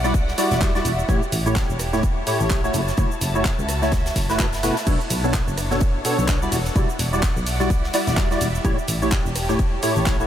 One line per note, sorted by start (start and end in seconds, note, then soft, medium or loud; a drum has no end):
0.00 0.34 B1 loud
0.00 1.09 D5 medium
0.00 1.76 E5 medium
0.00 1.09 F#5 medium
0.00 snare soft
0.04 0.13 G3 loud
0.04 0.13 E4 medium
0.04 0.13 F#4 medium
0.04 0.13 D5 loud
0.04 shaker soft
0.14 kick loud
0.14 closed hi-hat medium
0.14 shaker soft
0.28 snare soft
0.38 0.72 G3 loud
0.38 0.72 E4 medium
0.38 0.72 F#4 medium
0.38 0.72 D5 loud
0.38 snare loud
0.38 closed hi-hat medium
0.38 open hi-hat loud
0.38 shaker medium
0.51 0.81 E1 medium
0.51 snare medium
0.51 closed hi-hat medium
0.51 shaker soft
0.61 kick loud
0.61 snare loud
0.61 clap loud
0.61 closed hi-hat medium
0.61 shaker soft
0.75 0.91 G3 medium
0.75 0.91 E4 medium
0.75 0.91 F#4 medium
0.75 0.91 D5 medium
0.75 snare soft
0.75 shaker soft
0.85 1.04 E1 loud
0.85 closed hi-hat medium
0.85 open hi-hat medium
0.85 shaker medium
0.99 shaker soft
1.09 1.19 A1 loud
1.09 1.21 A2 medium
1.09 1.21 A3 medium
1.09 1.21 E4 medium
1.09 1.21 G4 medium
1.09 2.74 G4 medium
1.09 1.21 C#5 medium
1.09 kick loud
1.09 closed hi-hat medium
1.09 shaker soft
1.18 3.61 C#5 medium
1.23 shaker soft
1.32 1.64 A1 loud
1.32 closed hi-hat medium
1.32 open hi-hat loud
1.32 shaker medium
1.46 1.55 A2 medium
1.46 1.55 A3 medium
1.46 1.55 E4 medium
1.46 1.55 G4 medium
1.46 1.55 C#5 medium
1.46 shaker soft
1.56 7.17 A5 medium
1.56 kick loud
1.56 snare loud
1.56 clap loud
1.56 closed hi-hat loud
1.56 shaker soft
1.70 2.23 E1 medium
1.70 shaker soft
1.79 cross-stick medium
1.79 closed hi-hat medium
1.79 open hi-hat medium
1.79 shaker medium
1.93 2.02 A2 loud
1.93 2.02 A3 medium
1.93 2.02 E4 medium
1.93 2.02 G4 medium
1.93 2.02 C#5 loud
1.93 snare medium
1.93 shaker soft
2.03 kick loud
2.03 closed hi-hat loud
2.03 shaker soft
2.27 2.61 A2 loud
2.27 2.61 A3 medium
2.27 2.61 E4 medium
2.27 2.61 G4 medium
2.27 2.61 C#5 loud
2.27 snare medium
2.27 closed hi-hat medium
2.27 open hi-hat loud
2.27 shaker medium
2.40 2.70 A1 medium
2.40 closed hi-hat soft
2.40 shaker soft
2.50 kick loud
2.50 snare loud
2.50 clap loud
2.50 closed hi-hat medium
2.50 shaker soft
2.64 2.80 A3 medium
2.64 2.80 E4 medium
2.64 2.80 F#4 medium
2.64 2.80 C#5 medium
2.64 shaker soft
2.74 2.93 F#1 loud
2.74 5.54 F#4 medium
2.74 closed hi-hat medium
2.74 open hi-hat medium
2.74 shaker medium
2.88 snare soft
2.88 shaker soft
2.94 3.08 F#1 loud
2.94 3.10 A3 medium
2.94 3.10 E4 medium
2.94 3.10 F#4 medium
2.94 3.10 C#5 medium
2.94 5.54 E5 medium
2.94 kick loud
2.94 closed hi-hat medium
2.94 shaker soft
3.12 shaker soft
3.21 3.53 F#1 loud
3.21 snare soft
3.21 closed hi-hat medium
3.21 open hi-hat loud
3.21 shaker medium
3.35 3.44 A3 medium
3.35 3.44 E4 medium
3.35 3.44 F#4 medium
3.35 3.44 C#5 loud
3.35 shaker soft
3.45 kick loud
3.45 snare loud
3.45 clap loud
3.45 closed hi-hat medium
3.45 shaker soft
3.59 4.12 C#2 loud
3.59 shaker soft
3.69 cross-stick medium
3.69 closed hi-hat medium
3.69 open hi-hat medium
3.69 shaker medium
3.82 3.91 A3 loud
3.82 3.91 E4 medium
3.82 3.91 F#4 medium
3.82 3.91 C#5 loud
3.82 snare medium
3.82 shaker soft
3.92 kick loud
3.92 snare loud
3.92 closed hi-hat medium
3.92 shaker soft
4.06 snare loud
4.06 closed hi-hat medium
4.06 shaker soft
4.16 4.71 F#1 medium
4.16 kick medium
4.16 snare loud
4.16 closed hi-hat medium
4.16 open hi-hat loud
4.16 shaker medium
4.29 4.46 A3 medium
4.29 4.46 E4 medium
4.29 4.46 F#4 medium
4.29 4.46 B4 loud
4.29 snare loud
4.29 closed hi-hat medium
4.29 shaker soft
4.39 kick loud
4.39 snare loud
4.39 clap loud
4.39 closed hi-hat medium
4.39 shaker soft
4.53 snare loud
4.53 closed hi-hat medium
4.53 shaker soft
4.63 4.75 B2 loud
4.63 4.75 A3 medium
4.63 4.75 E4 medium
4.63 4.75 F#4 medium
4.63 4.75 B4 loud
4.63 snare loud
4.63 closed hi-hat medium
4.63 open hi-hat medium
4.63 shaker medium
4.77 snare loud
4.77 closed hi-hat medium
4.77 shaker soft
4.87 4.97 B1 loud
4.87 4.99 B2 medium
4.87 4.99 B3 medium
4.87 7.39 D4 medium
4.87 4.99 D4 medium
4.87 4.99 A4 medium
4.87 4.99 C#5 medium
4.87 kick loud
4.87 closed hi-hat medium
4.87 ride medium
4.87 crash medium
4.87 shaker soft
5.01 shaker soft
5.10 5.42 B1 loud
5.10 closed hi-hat medium
5.10 open hi-hat loud
5.10 ride medium
5.10 shaker medium
5.24 5.33 B2 medium
5.24 5.33 B3 medium
5.24 5.33 D4 medium
5.24 5.33 A4 medium
5.24 5.33 C#5 medium
5.24 shaker soft
5.34 kick loud
5.34 snare loud
5.34 clap loud
5.34 closed hi-hat loud
5.34 ride medium
5.34 shaker soft
5.42 6.52 C#5 medium
5.48 6.01 F#1 loud
5.48 shaker soft
5.58 cross-stick medium
5.58 closed hi-hat medium
5.58 open hi-hat medium
5.58 ride medium
5.58 shaker medium
5.71 5.80 B2 loud
5.71 5.80 B3 medium
5.71 5.80 D4 medium
5.71 5.80 A4 medium
5.71 5.80 C#5 loud
5.71 snare medium
5.71 shaker soft
5.81 kick loud
5.81 closed hi-hat medium
5.81 ride medium
5.81 shaker soft
6.05 6.39 B2 loud
6.05 6.39 B3 medium
6.05 6.39 D4 medium
6.05 6.39 A4 medium
6.05 6.39 C#5 loud
6.05 snare medium
6.05 closed hi-hat medium
6.05 open hi-hat loud
6.05 ride medium
6.05 shaker medium
6.19 6.48 B1 medium
6.19 closed hi-hat soft
6.19 shaker soft
6.28 kick loud
6.28 snare loud
6.28 clap loud
6.28 closed hi-hat medium
6.28 ride medium
6.28 shaker soft
6.42 6.58 G3 medium
6.42 6.58 E4 medium
6.42 6.58 F#4 medium
6.42 6.58 D5 medium
6.42 shaker soft
6.52 6.71 E1 loud
6.52 8.65 F#5 medium
6.52 closed hi-hat medium
6.52 open hi-hat medium
6.52 ride medium
6.52 shaker medium
6.65 9.31 E5 medium
6.65 snare soft
6.65 shaker soft
6.76 6.86 E1 loud
6.76 6.88 G3 medium
6.76 6.88 E4 medium
6.76 6.88 F#4 medium
6.76 6.88 D5 medium
6.76 8.65 D5 medium
6.76 kick loud
6.76 closed hi-hat medium
6.76 ride medium
6.76 shaker soft
6.90 shaker soft
6.99 7.31 E1 loud
6.99 snare soft
6.99 closed hi-hat medium
6.99 open hi-hat loud
6.99 ride medium
6.99 shaker medium
7.13 7.22 G3 medium
7.13 7.22 E4 medium
7.13 7.22 F#4 medium
7.13 7.22 D5 loud
7.13 shaker soft
7.23 kick loud
7.23 snare loud
7.23 clap loud
7.23 closed hi-hat medium
7.23 ride medium
7.23 shaker soft
7.37 7.90 B1 medium
7.37 shaker soft
7.47 closed hi-hat medium
7.47 open hi-hat loud
7.47 ride medium
7.47 shaker medium
7.60 7.69 G3 loud
7.60 7.69 E4 medium
7.60 7.69 F#4 medium
7.60 7.69 D5 loud
7.60 snare medium
7.60 shaker soft
7.70 kick loud
7.70 closed hi-hat medium
7.70 ride medium
7.70 shaker soft
7.84 snare soft
7.93 8.28 G3 medium
7.93 8.28 E4 medium
7.93 8.28 F#4 medium
7.93 8.28 D5 loud
7.93 snare loud
7.93 closed hi-hat medium
7.93 open hi-hat loud
7.93 ride medium
7.93 shaker medium
8.07 8.37 E1 medium
8.07 snare loud
8.07 closed hi-hat medium
8.07 shaker soft
8.17 kick loud
8.17 snare loud
8.17 clap loud
8.17 closed hi-hat medium
8.17 ride medium
8.17 shaker soft
8.31 8.47 G3 medium
8.31 8.47 E4 medium
8.31 8.47 F#4 medium
8.31 8.47 D5 medium
8.31 snare soft
8.31 shaker soft
8.41 8.60 E1 loud
8.41 closed hi-hat medium
8.41 open hi-hat loud
8.41 ride medium
8.41 shaker medium
8.55 shaker soft
8.64 8.75 A1 loud
8.64 8.77 A2 medium
8.64 8.77 A3 medium
8.64 8.77 E4 medium
8.64 10.27 G4 medium
8.64 8.77 G4 medium
8.64 8.77 C#5 medium
8.64 kick loud
8.64 closed hi-hat medium
8.64 ride medium
8.64 shaker soft
8.79 shaker soft
8.87 9.20 A1 loud
8.87 10.27 A5 medium
8.87 closed hi-hat medium
8.87 open hi-hat loud
8.87 ride medium
8.87 shaker medium
9.02 9.11 A2 medium
9.02 9.11 A3 medium
9.02 9.11 E4 medium
9.02 9.11 G4 medium
9.02 9.11 C#5 loud
9.02 shaker soft
9.11 kick loud
9.11 snare loud
9.11 clap loud
9.11 closed hi-hat medium
9.11 ride medium
9.11 shaker soft
9.25 9.79 E1 loud
9.25 shaker soft
9.34 10.27 C#5 medium
9.34 cross-stick medium
9.34 closed hi-hat medium
9.34 open hi-hat loud
9.34 ride medium
9.34 shaker medium
9.49 9.58 A2 loud
9.49 9.58 A3 medium
9.49 9.58 E4 medium
9.49 9.58 G4 medium
9.49 9.58 C#5 loud
9.49 snare medium
9.49 shaker soft
9.59 kick loud
9.59 closed hi-hat medium
9.59 ride medium
9.59 shaker soft
9.83 10.17 A2 loud
9.83 10.17 A3 medium
9.83 10.17 E4 medium
9.83 10.17 G4 medium
9.83 10.17 C#5 loud
9.83 snare medium
9.83 closed hi-hat medium
9.83 open hi-hat loud
9.83 ride medium
9.83 shaker medium
9.96 10.26 A1 medium
9.96 closed hi-hat soft
9.96 shaker soft
10.06 kick loud
10.06 snare loud
10.06 clap loud
10.06 closed hi-hat medium
10.06 ride medium
10.06 shaker soft
10.20 10.27 A3 medium
10.20 10.27 E4 medium
10.20 10.27 F#4 medium
10.20 10.27 C#5 medium
10.20 shaker soft